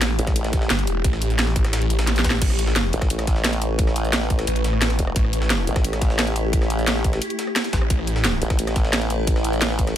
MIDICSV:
0, 0, Header, 1, 5, 480
1, 0, Start_track
1, 0, Tempo, 342857
1, 1463, Time_signature, 4, 2, 24, 8
1, 13964, End_track
2, 0, Start_track
2, 0, Title_t, "Synth drone"
2, 0, Program_c, 0, 95
2, 0, Note_on_c, 0, 57, 85
2, 0, Note_on_c, 0, 64, 79
2, 0, Note_on_c, 0, 67, 97
2, 3327, Note_off_c, 0, 57, 0
2, 3327, Note_off_c, 0, 64, 0
2, 3351, Note_off_c, 0, 67, 0
2, 3381, Note_on_c, 0, 57, 87
2, 3381, Note_on_c, 0, 64, 82
2, 3382, Note_on_c, 0, 71, 96
2, 7207, Note_off_c, 0, 71, 0
2, 7222, Note_on_c, 0, 67, 97
2, 11048, Note_off_c, 0, 67, 0
2, 11062, Note_on_c, 0, 71, 94
2, 13964, Note_off_c, 0, 57, 0
2, 13964, Note_off_c, 0, 64, 0
2, 13964, Note_off_c, 0, 71, 0
2, 13964, End_track
3, 0, Start_track
3, 0, Title_t, "Detuned saw bass"
3, 0, Program_c, 1, 39
3, 0, Note_on_c, 1, 33, 96
3, 243, Note_off_c, 1, 33, 0
3, 983, Note_on_c, 1, 31, 103
3, 1203, Note_off_c, 1, 31, 0
3, 1222, Note_on_c, 1, 28, 98
3, 1443, Note_off_c, 1, 28, 0
3, 1462, Note_on_c, 1, 33, 98
3, 2163, Note_off_c, 1, 33, 0
3, 2183, Note_on_c, 1, 33, 99
3, 3364, Note_off_c, 1, 33, 0
3, 3383, Note_on_c, 1, 33, 98
3, 4083, Note_off_c, 1, 33, 0
3, 6262, Note_on_c, 1, 33, 98
3, 6963, Note_off_c, 1, 33, 0
3, 7222, Note_on_c, 1, 33, 100
3, 7923, Note_off_c, 1, 33, 0
3, 10822, Note_on_c, 1, 33, 97
3, 11043, Note_off_c, 1, 33, 0
3, 11062, Note_on_c, 1, 33, 99
3, 11763, Note_off_c, 1, 33, 0
3, 13964, End_track
4, 0, Start_track
4, 0, Title_t, "Wobble bass"
4, 0, Program_c, 2, 39
4, 262, Note_on_c, 2, 33, 104
4, 963, Note_off_c, 2, 33, 0
4, 4103, Note_on_c, 2, 33, 100
4, 4324, Note_off_c, 2, 33, 0
4, 4343, Note_on_c, 2, 33, 100
4, 6243, Note_off_c, 2, 33, 0
4, 6982, Note_on_c, 2, 28, 102
4, 7203, Note_off_c, 2, 28, 0
4, 7942, Note_on_c, 2, 33, 103
4, 8163, Note_off_c, 2, 33, 0
4, 8182, Note_on_c, 2, 33, 99
4, 10083, Note_off_c, 2, 33, 0
4, 11782, Note_on_c, 2, 33, 99
4, 12003, Note_off_c, 2, 33, 0
4, 12022, Note_on_c, 2, 33, 100
4, 13923, Note_off_c, 2, 33, 0
4, 13964, End_track
5, 0, Start_track
5, 0, Title_t, "Drums"
5, 22, Note_on_c, 9, 38, 117
5, 22, Note_on_c, 9, 42, 91
5, 162, Note_off_c, 9, 38, 0
5, 162, Note_off_c, 9, 42, 0
5, 262, Note_on_c, 9, 42, 73
5, 382, Note_off_c, 9, 42, 0
5, 382, Note_on_c, 9, 36, 103
5, 382, Note_on_c, 9, 37, 45
5, 382, Note_on_c, 9, 38, 51
5, 382, Note_on_c, 9, 42, 37
5, 501, Note_off_c, 9, 42, 0
5, 501, Note_on_c, 9, 42, 102
5, 502, Note_off_c, 9, 42, 0
5, 502, Note_on_c, 9, 42, 92
5, 522, Note_off_c, 9, 36, 0
5, 522, Note_off_c, 9, 37, 0
5, 522, Note_off_c, 9, 38, 0
5, 622, Note_off_c, 9, 42, 0
5, 622, Note_on_c, 9, 38, 43
5, 622, Note_on_c, 9, 42, 39
5, 741, Note_off_c, 9, 42, 0
5, 741, Note_on_c, 9, 42, 72
5, 742, Note_on_c, 9, 36, 102
5, 743, Note_off_c, 9, 38, 0
5, 743, Note_off_c, 9, 42, 0
5, 743, Note_on_c, 9, 38, 44
5, 743, Note_on_c, 9, 42, 69
5, 863, Note_off_c, 9, 38, 0
5, 863, Note_on_c, 9, 38, 50
5, 882, Note_off_c, 9, 36, 0
5, 883, Note_off_c, 9, 42, 0
5, 982, Note_off_c, 9, 38, 0
5, 982, Note_on_c, 9, 38, 115
5, 982, Note_on_c, 9, 42, 97
5, 983, Note_off_c, 9, 38, 0
5, 983, Note_off_c, 9, 42, 0
5, 983, Note_on_c, 9, 38, 117
5, 983, Note_on_c, 9, 42, 90
5, 1103, Note_off_c, 9, 42, 0
5, 1103, Note_on_c, 9, 42, 40
5, 1123, Note_off_c, 9, 38, 0
5, 1222, Note_off_c, 9, 42, 0
5, 1222, Note_on_c, 9, 42, 67
5, 1223, Note_off_c, 9, 42, 0
5, 1223, Note_on_c, 9, 42, 69
5, 1363, Note_off_c, 9, 42, 0
5, 1462, Note_on_c, 9, 36, 120
5, 1462, Note_on_c, 9, 42, 102
5, 1463, Note_off_c, 9, 42, 0
5, 1463, Note_on_c, 9, 42, 93
5, 1582, Note_on_c, 9, 37, 36
5, 1583, Note_on_c, 9, 38, 45
5, 1602, Note_off_c, 9, 36, 0
5, 1603, Note_off_c, 9, 42, 0
5, 1702, Note_on_c, 9, 42, 71
5, 1703, Note_off_c, 9, 42, 0
5, 1703, Note_on_c, 9, 42, 71
5, 1722, Note_off_c, 9, 37, 0
5, 1723, Note_off_c, 9, 38, 0
5, 1823, Note_off_c, 9, 42, 0
5, 1823, Note_on_c, 9, 42, 47
5, 1942, Note_off_c, 9, 42, 0
5, 1942, Note_on_c, 9, 38, 118
5, 1942, Note_on_c, 9, 42, 101
5, 2063, Note_off_c, 9, 38, 0
5, 2063, Note_on_c, 9, 38, 45
5, 2082, Note_off_c, 9, 42, 0
5, 2182, Note_on_c, 9, 36, 104
5, 2183, Note_on_c, 9, 42, 75
5, 2203, Note_off_c, 9, 38, 0
5, 2303, Note_off_c, 9, 42, 0
5, 2303, Note_on_c, 9, 37, 51
5, 2303, Note_on_c, 9, 38, 51
5, 2303, Note_on_c, 9, 42, 39
5, 2322, Note_off_c, 9, 36, 0
5, 2423, Note_off_c, 9, 38, 0
5, 2423, Note_off_c, 9, 42, 0
5, 2423, Note_on_c, 9, 38, 107
5, 2423, Note_on_c, 9, 42, 104
5, 2443, Note_off_c, 9, 37, 0
5, 2543, Note_off_c, 9, 42, 0
5, 2543, Note_on_c, 9, 42, 41
5, 2563, Note_off_c, 9, 38, 0
5, 2663, Note_off_c, 9, 42, 0
5, 2663, Note_on_c, 9, 42, 65
5, 2782, Note_off_c, 9, 42, 0
5, 2782, Note_on_c, 9, 38, 104
5, 2782, Note_on_c, 9, 42, 80
5, 2783, Note_on_c, 9, 37, 34
5, 2903, Note_off_c, 9, 38, 0
5, 2903, Note_off_c, 9, 42, 0
5, 2903, Note_on_c, 9, 38, 70
5, 2903, Note_on_c, 9, 42, 101
5, 2923, Note_off_c, 9, 37, 0
5, 3023, Note_off_c, 9, 42, 0
5, 3023, Note_on_c, 9, 42, 64
5, 3043, Note_off_c, 9, 38, 0
5, 3063, Note_on_c, 9, 38, 88
5, 3143, Note_off_c, 9, 38, 0
5, 3143, Note_off_c, 9, 42, 0
5, 3143, Note_on_c, 9, 36, 61
5, 3143, Note_on_c, 9, 38, 105
5, 3143, Note_on_c, 9, 42, 85
5, 3223, Note_off_c, 9, 38, 0
5, 3223, Note_on_c, 9, 38, 95
5, 3283, Note_off_c, 9, 36, 0
5, 3283, Note_off_c, 9, 42, 0
5, 3363, Note_off_c, 9, 38, 0
5, 3383, Note_on_c, 9, 36, 127
5, 3383, Note_on_c, 9, 42, 93
5, 3383, Note_on_c, 9, 49, 109
5, 3503, Note_on_c, 9, 37, 37
5, 3523, Note_off_c, 9, 36, 0
5, 3523, Note_off_c, 9, 42, 0
5, 3523, Note_off_c, 9, 49, 0
5, 3623, Note_on_c, 9, 42, 70
5, 3643, Note_off_c, 9, 37, 0
5, 3743, Note_on_c, 9, 38, 60
5, 3763, Note_off_c, 9, 42, 0
5, 3863, Note_off_c, 9, 38, 0
5, 3863, Note_on_c, 9, 38, 123
5, 3863, Note_on_c, 9, 42, 100
5, 3864, Note_off_c, 9, 38, 0
5, 3864, Note_off_c, 9, 42, 0
5, 3864, Note_on_c, 9, 38, 115
5, 3864, Note_on_c, 9, 42, 89
5, 4004, Note_off_c, 9, 38, 0
5, 4004, Note_off_c, 9, 42, 0
5, 4103, Note_on_c, 9, 42, 69
5, 4104, Note_off_c, 9, 42, 0
5, 4104, Note_on_c, 9, 42, 72
5, 4223, Note_off_c, 9, 42, 0
5, 4223, Note_on_c, 9, 36, 107
5, 4223, Note_on_c, 9, 37, 52
5, 4223, Note_on_c, 9, 38, 49
5, 4223, Note_on_c, 9, 42, 39
5, 4343, Note_off_c, 9, 42, 0
5, 4343, Note_on_c, 9, 42, 100
5, 4344, Note_off_c, 9, 42, 0
5, 4344, Note_on_c, 9, 42, 91
5, 4363, Note_off_c, 9, 36, 0
5, 4363, Note_off_c, 9, 37, 0
5, 4363, Note_off_c, 9, 38, 0
5, 4463, Note_off_c, 9, 42, 0
5, 4463, Note_on_c, 9, 37, 60
5, 4463, Note_on_c, 9, 38, 43
5, 4463, Note_on_c, 9, 42, 40
5, 4583, Note_off_c, 9, 42, 0
5, 4583, Note_on_c, 9, 36, 107
5, 4583, Note_on_c, 9, 42, 73
5, 4584, Note_off_c, 9, 38, 0
5, 4584, Note_off_c, 9, 42, 0
5, 4584, Note_on_c, 9, 38, 43
5, 4584, Note_on_c, 9, 42, 72
5, 4603, Note_off_c, 9, 37, 0
5, 4703, Note_off_c, 9, 38, 0
5, 4703, Note_on_c, 9, 38, 50
5, 4723, Note_off_c, 9, 36, 0
5, 4724, Note_off_c, 9, 42, 0
5, 4822, Note_off_c, 9, 38, 0
5, 4822, Note_on_c, 9, 38, 121
5, 4822, Note_on_c, 9, 42, 101
5, 4823, Note_off_c, 9, 38, 0
5, 4823, Note_off_c, 9, 42, 0
5, 4823, Note_on_c, 9, 38, 120
5, 4823, Note_on_c, 9, 42, 87
5, 4942, Note_off_c, 9, 42, 0
5, 4942, Note_on_c, 9, 42, 41
5, 4963, Note_off_c, 9, 38, 0
5, 5063, Note_off_c, 9, 42, 0
5, 5063, Note_on_c, 9, 42, 70
5, 5203, Note_off_c, 9, 42, 0
5, 5302, Note_on_c, 9, 36, 127
5, 5302, Note_on_c, 9, 42, 94
5, 5303, Note_off_c, 9, 42, 0
5, 5303, Note_on_c, 9, 42, 91
5, 5422, Note_on_c, 9, 37, 37
5, 5424, Note_on_c, 9, 38, 46
5, 5442, Note_off_c, 9, 36, 0
5, 5443, Note_off_c, 9, 42, 0
5, 5542, Note_on_c, 9, 42, 71
5, 5544, Note_off_c, 9, 42, 0
5, 5544, Note_on_c, 9, 42, 71
5, 5562, Note_off_c, 9, 37, 0
5, 5564, Note_off_c, 9, 38, 0
5, 5664, Note_off_c, 9, 42, 0
5, 5664, Note_on_c, 9, 42, 46
5, 5783, Note_off_c, 9, 42, 0
5, 5783, Note_on_c, 9, 38, 123
5, 5783, Note_on_c, 9, 42, 99
5, 5784, Note_off_c, 9, 38, 0
5, 5784, Note_off_c, 9, 42, 0
5, 5784, Note_on_c, 9, 38, 120
5, 5784, Note_on_c, 9, 42, 90
5, 5903, Note_off_c, 9, 38, 0
5, 5903, Note_on_c, 9, 38, 47
5, 5924, Note_off_c, 9, 42, 0
5, 6022, Note_on_c, 9, 36, 115
5, 6023, Note_on_c, 9, 42, 67
5, 6024, Note_off_c, 9, 42, 0
5, 6024, Note_on_c, 9, 42, 74
5, 6043, Note_off_c, 9, 38, 0
5, 6142, Note_off_c, 9, 42, 0
5, 6142, Note_on_c, 9, 37, 48
5, 6142, Note_on_c, 9, 42, 38
5, 6144, Note_on_c, 9, 38, 51
5, 6162, Note_off_c, 9, 36, 0
5, 6263, Note_off_c, 9, 42, 0
5, 6263, Note_on_c, 9, 42, 89
5, 6282, Note_off_c, 9, 37, 0
5, 6284, Note_off_c, 9, 38, 0
5, 6383, Note_off_c, 9, 42, 0
5, 6383, Note_on_c, 9, 42, 40
5, 6502, Note_off_c, 9, 42, 0
5, 6502, Note_on_c, 9, 42, 70
5, 6504, Note_off_c, 9, 42, 0
5, 6504, Note_on_c, 9, 38, 52
5, 6504, Note_on_c, 9, 42, 70
5, 6622, Note_on_c, 9, 37, 35
5, 6644, Note_off_c, 9, 38, 0
5, 6644, Note_off_c, 9, 42, 0
5, 6742, Note_on_c, 9, 38, 126
5, 6742, Note_on_c, 9, 42, 99
5, 6744, Note_off_c, 9, 38, 0
5, 6744, Note_off_c, 9, 42, 0
5, 6744, Note_on_c, 9, 38, 116
5, 6744, Note_on_c, 9, 42, 92
5, 6762, Note_off_c, 9, 37, 0
5, 6863, Note_off_c, 9, 38, 0
5, 6863, Note_off_c, 9, 42, 0
5, 6863, Note_on_c, 9, 38, 42
5, 6863, Note_on_c, 9, 42, 39
5, 6982, Note_on_c, 9, 36, 67
5, 6983, Note_off_c, 9, 42, 0
5, 6983, Note_on_c, 9, 42, 68
5, 6984, Note_off_c, 9, 42, 0
5, 6984, Note_on_c, 9, 42, 68
5, 7003, Note_off_c, 9, 38, 0
5, 7102, Note_on_c, 9, 37, 59
5, 7122, Note_off_c, 9, 36, 0
5, 7124, Note_off_c, 9, 42, 0
5, 7222, Note_on_c, 9, 36, 127
5, 7222, Note_on_c, 9, 42, 97
5, 7223, Note_off_c, 9, 42, 0
5, 7223, Note_on_c, 9, 42, 92
5, 7242, Note_off_c, 9, 37, 0
5, 7343, Note_on_c, 9, 37, 36
5, 7362, Note_off_c, 9, 36, 0
5, 7363, Note_off_c, 9, 42, 0
5, 7463, Note_on_c, 9, 42, 71
5, 7483, Note_off_c, 9, 37, 0
5, 7583, Note_on_c, 9, 38, 57
5, 7603, Note_off_c, 9, 42, 0
5, 7703, Note_off_c, 9, 38, 0
5, 7703, Note_on_c, 9, 38, 121
5, 7703, Note_on_c, 9, 42, 89
5, 7843, Note_off_c, 9, 38, 0
5, 7843, Note_off_c, 9, 42, 0
5, 7943, Note_on_c, 9, 42, 74
5, 8062, Note_on_c, 9, 36, 117
5, 8063, Note_off_c, 9, 42, 0
5, 8063, Note_on_c, 9, 37, 48
5, 8063, Note_on_c, 9, 38, 52
5, 8063, Note_on_c, 9, 42, 36
5, 8183, Note_off_c, 9, 42, 0
5, 8183, Note_on_c, 9, 42, 91
5, 8202, Note_off_c, 9, 36, 0
5, 8203, Note_off_c, 9, 37, 0
5, 8203, Note_off_c, 9, 38, 0
5, 8303, Note_off_c, 9, 42, 0
5, 8303, Note_on_c, 9, 37, 56
5, 8303, Note_on_c, 9, 38, 43
5, 8303, Note_on_c, 9, 42, 37
5, 8422, Note_off_c, 9, 38, 0
5, 8422, Note_off_c, 9, 42, 0
5, 8422, Note_on_c, 9, 36, 113
5, 8422, Note_on_c, 9, 38, 44
5, 8422, Note_on_c, 9, 42, 73
5, 8423, Note_off_c, 9, 42, 0
5, 8423, Note_on_c, 9, 42, 68
5, 8443, Note_off_c, 9, 37, 0
5, 8542, Note_off_c, 9, 38, 0
5, 8542, Note_on_c, 9, 38, 49
5, 8562, Note_off_c, 9, 36, 0
5, 8563, Note_off_c, 9, 42, 0
5, 8662, Note_off_c, 9, 38, 0
5, 8662, Note_on_c, 9, 38, 127
5, 8662, Note_on_c, 9, 42, 96
5, 8783, Note_off_c, 9, 42, 0
5, 8783, Note_on_c, 9, 42, 38
5, 8802, Note_off_c, 9, 38, 0
5, 8902, Note_off_c, 9, 42, 0
5, 8902, Note_on_c, 9, 42, 67
5, 9042, Note_off_c, 9, 42, 0
5, 9142, Note_on_c, 9, 36, 127
5, 9142, Note_on_c, 9, 42, 90
5, 9143, Note_off_c, 9, 42, 0
5, 9143, Note_on_c, 9, 42, 88
5, 9263, Note_on_c, 9, 37, 35
5, 9263, Note_on_c, 9, 38, 45
5, 9282, Note_off_c, 9, 36, 0
5, 9283, Note_off_c, 9, 42, 0
5, 9382, Note_on_c, 9, 42, 66
5, 9403, Note_off_c, 9, 37, 0
5, 9403, Note_off_c, 9, 38, 0
5, 9502, Note_off_c, 9, 42, 0
5, 9502, Note_on_c, 9, 42, 46
5, 9622, Note_off_c, 9, 42, 0
5, 9622, Note_on_c, 9, 38, 127
5, 9622, Note_on_c, 9, 42, 93
5, 9742, Note_off_c, 9, 38, 0
5, 9742, Note_on_c, 9, 38, 46
5, 9762, Note_off_c, 9, 42, 0
5, 9862, Note_on_c, 9, 36, 112
5, 9862, Note_on_c, 9, 42, 71
5, 9863, Note_off_c, 9, 42, 0
5, 9863, Note_on_c, 9, 42, 64
5, 9882, Note_off_c, 9, 38, 0
5, 9982, Note_on_c, 9, 38, 51
5, 9983, Note_off_c, 9, 42, 0
5, 9983, Note_on_c, 9, 37, 46
5, 9983, Note_on_c, 9, 42, 35
5, 10002, Note_off_c, 9, 36, 0
5, 10102, Note_off_c, 9, 42, 0
5, 10102, Note_on_c, 9, 42, 89
5, 10103, Note_off_c, 9, 42, 0
5, 10103, Note_on_c, 9, 42, 91
5, 10122, Note_off_c, 9, 38, 0
5, 10123, Note_off_c, 9, 37, 0
5, 10223, Note_off_c, 9, 42, 0
5, 10223, Note_on_c, 9, 42, 36
5, 10342, Note_off_c, 9, 42, 0
5, 10342, Note_on_c, 9, 38, 51
5, 10342, Note_on_c, 9, 42, 71
5, 10343, Note_off_c, 9, 42, 0
5, 10343, Note_on_c, 9, 42, 68
5, 10462, Note_on_c, 9, 37, 32
5, 10482, Note_off_c, 9, 38, 0
5, 10483, Note_off_c, 9, 42, 0
5, 10582, Note_on_c, 9, 38, 119
5, 10582, Note_on_c, 9, 42, 90
5, 10583, Note_off_c, 9, 38, 0
5, 10583, Note_off_c, 9, 42, 0
5, 10583, Note_on_c, 9, 38, 127
5, 10583, Note_on_c, 9, 42, 91
5, 10602, Note_off_c, 9, 37, 0
5, 10702, Note_off_c, 9, 38, 0
5, 10702, Note_on_c, 9, 38, 42
5, 10703, Note_off_c, 9, 42, 0
5, 10703, Note_on_c, 9, 42, 38
5, 10822, Note_off_c, 9, 38, 0
5, 10822, Note_off_c, 9, 42, 0
5, 10822, Note_on_c, 9, 36, 65
5, 10822, Note_on_c, 9, 38, 104
5, 10822, Note_on_c, 9, 42, 82
5, 10823, Note_off_c, 9, 42, 0
5, 10823, Note_on_c, 9, 42, 64
5, 10943, Note_on_c, 9, 37, 55
5, 10962, Note_off_c, 9, 36, 0
5, 10962, Note_off_c, 9, 38, 0
5, 10963, Note_off_c, 9, 42, 0
5, 11062, Note_on_c, 9, 36, 123
5, 11062, Note_on_c, 9, 42, 87
5, 11063, Note_off_c, 9, 42, 0
5, 11063, Note_on_c, 9, 42, 91
5, 11083, Note_off_c, 9, 37, 0
5, 11183, Note_on_c, 9, 37, 34
5, 11202, Note_off_c, 9, 36, 0
5, 11203, Note_off_c, 9, 42, 0
5, 11303, Note_on_c, 9, 42, 66
5, 11323, Note_off_c, 9, 37, 0
5, 11423, Note_on_c, 9, 38, 60
5, 11443, Note_off_c, 9, 42, 0
5, 11543, Note_off_c, 9, 38, 0
5, 11543, Note_on_c, 9, 38, 126
5, 11543, Note_on_c, 9, 42, 92
5, 11683, Note_off_c, 9, 38, 0
5, 11683, Note_off_c, 9, 42, 0
5, 11783, Note_on_c, 9, 42, 71
5, 11902, Note_on_c, 9, 36, 110
5, 11903, Note_on_c, 9, 38, 51
5, 11904, Note_off_c, 9, 42, 0
5, 11904, Note_on_c, 9, 37, 47
5, 11904, Note_on_c, 9, 42, 35
5, 12023, Note_off_c, 9, 42, 0
5, 12023, Note_on_c, 9, 42, 97
5, 12042, Note_off_c, 9, 36, 0
5, 12043, Note_off_c, 9, 38, 0
5, 12044, Note_off_c, 9, 37, 0
5, 12143, Note_off_c, 9, 42, 0
5, 12143, Note_on_c, 9, 37, 54
5, 12143, Note_on_c, 9, 38, 41
5, 12143, Note_on_c, 9, 42, 36
5, 12262, Note_on_c, 9, 36, 107
5, 12263, Note_off_c, 9, 38, 0
5, 12263, Note_off_c, 9, 42, 0
5, 12263, Note_on_c, 9, 38, 44
5, 12263, Note_on_c, 9, 42, 69
5, 12283, Note_off_c, 9, 37, 0
5, 12383, Note_off_c, 9, 38, 0
5, 12383, Note_on_c, 9, 38, 51
5, 12402, Note_off_c, 9, 36, 0
5, 12403, Note_off_c, 9, 42, 0
5, 12502, Note_off_c, 9, 38, 0
5, 12502, Note_on_c, 9, 38, 124
5, 12502, Note_on_c, 9, 42, 94
5, 12503, Note_off_c, 9, 38, 0
5, 12503, Note_off_c, 9, 42, 0
5, 12503, Note_on_c, 9, 38, 117
5, 12503, Note_on_c, 9, 42, 92
5, 12623, Note_off_c, 9, 42, 0
5, 12623, Note_on_c, 9, 42, 38
5, 12643, Note_off_c, 9, 38, 0
5, 12742, Note_off_c, 9, 42, 0
5, 12742, Note_on_c, 9, 42, 62
5, 12743, Note_off_c, 9, 42, 0
5, 12743, Note_on_c, 9, 42, 69
5, 12883, Note_off_c, 9, 42, 0
5, 12982, Note_on_c, 9, 36, 122
5, 12983, Note_on_c, 9, 42, 92
5, 13102, Note_on_c, 9, 37, 35
5, 13104, Note_on_c, 9, 38, 46
5, 13122, Note_off_c, 9, 36, 0
5, 13123, Note_off_c, 9, 42, 0
5, 13223, Note_on_c, 9, 42, 69
5, 13224, Note_off_c, 9, 42, 0
5, 13224, Note_on_c, 9, 42, 73
5, 13242, Note_off_c, 9, 37, 0
5, 13244, Note_off_c, 9, 38, 0
5, 13343, Note_off_c, 9, 42, 0
5, 13343, Note_on_c, 9, 42, 46
5, 13462, Note_off_c, 9, 42, 0
5, 13462, Note_on_c, 9, 38, 119
5, 13462, Note_on_c, 9, 42, 96
5, 13463, Note_off_c, 9, 38, 0
5, 13463, Note_off_c, 9, 42, 0
5, 13463, Note_on_c, 9, 38, 115
5, 13463, Note_on_c, 9, 42, 91
5, 13584, Note_off_c, 9, 38, 0
5, 13584, Note_on_c, 9, 38, 45
5, 13603, Note_off_c, 9, 42, 0
5, 13703, Note_on_c, 9, 36, 105
5, 13703, Note_on_c, 9, 42, 74
5, 13724, Note_off_c, 9, 38, 0
5, 13822, Note_off_c, 9, 42, 0
5, 13822, Note_on_c, 9, 37, 44
5, 13822, Note_on_c, 9, 42, 37
5, 13823, Note_on_c, 9, 38, 49
5, 13843, Note_off_c, 9, 36, 0
5, 13962, Note_off_c, 9, 37, 0
5, 13962, Note_off_c, 9, 42, 0
5, 13963, Note_off_c, 9, 38, 0
5, 13964, End_track
0, 0, End_of_file